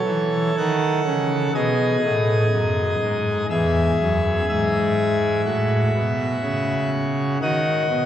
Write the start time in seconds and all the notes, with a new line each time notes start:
Already playing: A4 C#5
0.06 E3
0.57 D#3 F#5
1.07 C#3
1.55 B2 G#4 D#5
2.03 A2
2.53 F#2
3.03 G#2
3.50 E2 G#4 E5
4.01 F#2
4.49 G#2 E5
5.46 A2 F#4
5.95 B2
6.43 C#3
7.41 D#3 F#4 D#5
7.89 B2